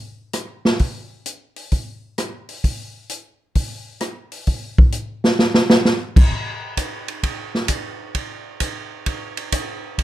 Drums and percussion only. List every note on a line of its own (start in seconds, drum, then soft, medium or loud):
0.33 cross-stick medium
0.33 closed hi-hat medium
0.65 snare soft
0.79 kick soft
0.79 open hi-hat soft
1.26 closed hi-hat medium
1.56 open hi-hat soft
1.72 kick soft
1.72 open hi-hat soft
2.18 cross-stick medium
2.18 closed hi-hat medium
2.49 open hi-hat soft
2.64 kick soft
2.64 open hi-hat soft
3.09 closed hi-hat medium
3.55 kick soft
3.55 open hi-hat soft
4.00 cross-stick medium
4.00 closed hi-hat medium
4.32 open hi-hat soft
4.47 kick soft
4.47 open hi-hat soft
4.78 kick medium
4.92 closed hi-hat medium
5.24 snare medium
5.39 snare medium
5.54 snare medium
5.70 snare medium
5.85 snare medium
6.16 kick medium
6.16 crash medium
6.31 kick soft
6.77 kick soft
6.77 hi-hat pedal medium
6.77 ride medium
7.08 ride soft
7.23 kick soft
7.23 ride medium
7.55 snare soft
7.68 kick soft
7.68 hi-hat pedal medium
7.68 ride medium
8.15 kick soft
8.15 ride soft
8.60 kick soft
8.60 hi-hat pedal soft
8.60 ride medium
9.06 kick soft
9.06 ride medium
9.37 ride soft
9.52 kick soft
9.52 hi-hat pedal soft
9.52 ride medium
9.98 kick soft
9.98 ride soft